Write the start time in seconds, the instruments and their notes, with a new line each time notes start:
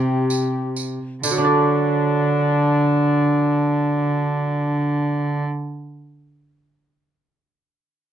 Already playing: lute C3 E4 G4, cello C3, cornet G4
0.30 tambourine
0.76 tambourine
1.23 cello D3, lute D3, cornet D4, tambourine
1.31 lute F#3
1.38 lute D4
1.44 lute D5